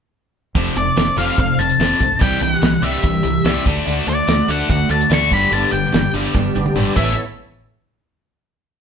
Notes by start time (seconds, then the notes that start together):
0.55 F1 F2 C3 F3 C4 D4 A4, kick, closed hi-hat
0.75 F1 F2 C3 C4 D4 A4 D5, closed hi-hat
0.96 F1 F2 C3 F3 C4 D4 A4, snare, closed hi-hat
1.16 F1 F2 C3 F3 C4 D4 A4 F5, closed hi-hat
1.28 closed hi-hat
1.38 F1 F2 C3 F3 C4 D4 A4 F5, kick, closed hi-hat
1.58 F1 F2 C3 C4 D4 A4 A5, closed hi-hat
1.70 closed hi-hat
1.78 F1 F2 C3 F3 C4 D4 A4, snare, closed hi-hat
2.00 B1 F2 C3 C4 D4 A4, kick, closed hi-hat
2.19 C2 C3 E3 G3 D4 G5, kick, closed hi-hat
2.24 G3 G4
2.41 C2 C3 E3 G3 D4 G4 G5, closed hi-hat
2.53 F#5, snare
2.62 C2 C3 E3 G3 D4 G4, snare, closed hi-hat
2.82 C2 C3 E3 G3 D4 G4 E5, closed hi-hat
2.93 closed hi-hat
3.03 C2 C3 E3, kick, closed hi-hat
3.07 E3 G3 D4 G4
3.23 C2 C3 E3 G4, closed hi-hat
3.28 G3 D4
3.44 C2 C3 E3 G3 D4 G4, snare, closed hi-hat
3.66 D2 D3 A3 D4 F#4, kick, closed hi-hat
3.86 D2 D3 A3 D4 F#4 D5, closed hi-hat
4.06 D2 D3 A3 D4 F#4 D5, closed hi-hat
4.10 A3
4.27 D2 D3 A3 D4, snare, closed hi-hat
4.32 F#4
4.48 D2 D3 A3 D4 F#4 F#5, closed hi-hat
4.53 A3
4.59 closed hi-hat
4.69 D2 D3 A3 D4 F#4 F#5, kick, closed hi-hat
4.89 D2 D3 A3 D4 A5, closed hi-hat
5.01 closed hi-hat
5.10 D2 D3 A3 D4 C#6, snare, closed hi-hat
5.14 F#4
5.30 G1 G2 D3 G3 B3 D4 G4 D5 B5, kick, closed hi-hat
5.34 G3 B3
5.50 G1 G2 D3 G3 A5, closed hi-hat
5.54 D3 B3 D4 G4
5.72 G1 G2 D3 B3 D4 G4 G5, closed hi-hat
5.77 G3
5.84 snare
5.92 G1 G2 D3 G3 B3 D4 G4, snare, closed hi-hat
6.14 G1 G2 D3 G3 B3 D4 G4, closed hi-hat
6.24 closed hi-hat
6.34 G1 G2 D3 G3 B3 D4 G4, kick, snare
6.55 G1 G2 D3 G3 B3 D4 G4, high tom
6.66 high tom
6.76 G1 G2 D3 G3 B3 D4 G4, mid tom
6.96 A1 A2 E3 A3 B3 C#4 E4 A4 C#5 E5, kick, crash